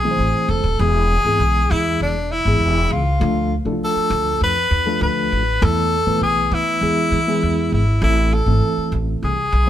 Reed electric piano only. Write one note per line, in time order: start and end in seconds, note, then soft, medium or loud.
0.04 0.60 E3 medium
0.04 0.60 A3 medium
0.04 0.60 C4 medium
0.04 0.60 E4 medium
0.04 0.11 G#4 medium
0.11 0.63 C5 medium
0.80 1.13 E3 medium
0.80 1.13 G#3 medium
0.80 1.14 B3 medium
0.80 1.13 E4 medium
0.80 1.14 G#4 medium
1.25 2.14 E3 medium
1.25 2.14 G#3 medium
1.25 2.14 B3 medium
1.25 2.15 E4 medium
1.25 2.15 G#4 loud
2.46 3.01 E3 medium
2.46 3.02 G#3 medium
2.46 3.02 B3 medium
2.46 3.02 E4 medium
2.46 3.02 G#4 medium
3.20 3.54 F3 medium
3.20 3.54 A3 medium
3.20 3.54 D4 medium
3.20 3.54 F4 medium
3.20 3.54 A4 medium
3.65 4.54 F3 medium
3.65 4.55 A3 medium
3.65 4.55 D4 medium
3.65 3.72 E4 medium
3.65 4.55 A4 medium
3.72 4.58 F4 medium
4.86 5.42 F3 medium
4.86 5.42 A3 medium
4.86 5.42 D4 medium
4.86 5.42 F4 medium
4.86 5.42 A4 medium
5.61 5.95 E3 medium
5.61 5.95 A3 medium
5.61 5.95 B3 medium
5.61 5.95 E4 medium
5.61 5.95 A4 medium
6.07 6.80 E3 medium
6.07 6.82 A3 medium
6.07 6.81 B3 medium
6.07 6.81 E4 medium
6.07 6.82 B4 medium
6.81 7.18 E3 medium
6.81 7.18 G#3 medium
6.81 7.18 B3 medium
6.81 7.18 E4 medium
6.81 7.19 G#4 medium
7.27 7.83 E3 medium
7.27 7.83 G#3 medium
7.27 7.83 B3 medium
7.27 7.83 E4 medium
7.27 7.84 G#4 loud
8.02 8.36 E3 medium
8.02 8.36 A3 medium
8.02 8.36 C4 medium
8.02 8.36 E4 medium
8.02 8.36 A4 medium
8.47 9.36 E3 medium
8.47 9.36 A3 medium
8.47 9.36 C4 medium
8.47 9.37 E4 medium
8.47 9.37 A4 medium
9.67 9.70 E3 medium